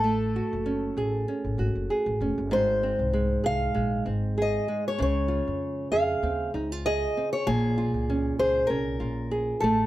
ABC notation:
X:1
M:4/4
L:1/16
Q:"Swing 16ths" 1/4=97
K:Bbm
V:1 name="Steel-string acoustic guitar"
=A6- A z8 z | c6 f4 z2 e3 d | d6 f4 z2 e3 d | A6 c2 B6 =A2 |]
V:2 name="Nylon-string guitar"
=A,2 G2 D2 _A2 D2 G2 A2 D2 | A,,2 C2 A,2 A2 A,2 C2 A2 A,2 | D,2 F4 A2 C2 E F A2 C2 | B,,2 F2 D2 A2 D2 F2 A2 =A,2 |]
V:3 name="Upright bass" clef=bass
=A,,,3 G,,,3 A,,,2 z A,,, _A,,, G,,, z =A,,, F,,, G,,, | A,,,3 C,,3 C,,2 B,,,2 A,,,4 z2 | D,,3 F,,3 F,,2 E,,2 D,,4 z2 | B,,,3 D,,3 D,,2 C,,2 B,,,4 =A,,,2 |]